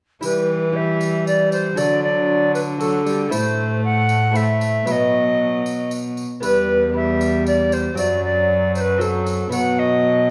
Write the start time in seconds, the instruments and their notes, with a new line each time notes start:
0.21 lute E3 E4 G4, cello E3, viola G3, recorder B4, tambourine
0.72 viola G3, lute E4 G4, recorder E5
1.01 tambourine
1.27 recorder D5, tambourine
1.52 recorder C5, tambourine
1.75 lute D3 F#4 A4, cello D3, viola F#3, recorder D5, tambourine
2.03 recorder D5
2.54 recorder B4, tambourine
2.78 viola F#3, lute F#4 A4, recorder A4, tambourine
3.06 viola G3, tambourine
3.29 lute A3 E4 C5, tambourine
3.33 lute A2, cello A2, viola A3, recorder C5
3.85 recorder F#5
4.09 tambourine
4.31 lute A3 E4 C5, tambourine
4.36 viola A3, recorder E5
4.61 tambourine
4.85 lute B2 B3 B4, cello B2, viola F#3, recorder E5, tambourine
4.91 recorder D#5
5.66 tambourine
5.91 tambourine
6.17 tambourine
6.40 lute E2 B3 B4, cello E2, viola G3, recorder B4, tambourine
6.92 viola G3, lute B3 B4, recorder E5
7.21 tambourine
7.46 recorder D5, tambourine
7.72 recorder C5, tambourine
7.95 lute F#2 C4 F#4, cello F#2, viola F#3, recorder D5, tambourine
8.24 recorder D5
8.75 recorder C5, tambourine
8.80 recorder B4
8.98 viola F#3, lute C4 F#4, recorder A4, tambourine
9.26 tambourine
9.49 lute B2 B3 F#4, cello B2, viola F#3, recorder F#5, tambourine
9.79 recorder D#5